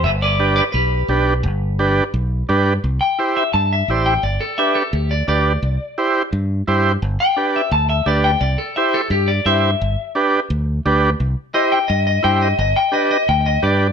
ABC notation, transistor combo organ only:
X:1
M:4/4
L:1/8
Q:1/4=172
K:C
V:1 name="Transistor combo organ"
z2 [DGB] z3 [DGB] z | z2 [DGB] z3 [DGB] z | z2 [EGc] z3 [EGc] z | z2 [DGB] z3 [DGB] z |
z2 [EGc] z3 [EGc] z | z2 [DGB] z3 [DGB] z | z2 [EGc] z3 [EGc] z | z2 [DGB] z3 [DGB] z |
z2 [EGc] z3 [EGc] z | z2 [DGB] z3 [DGB] z |]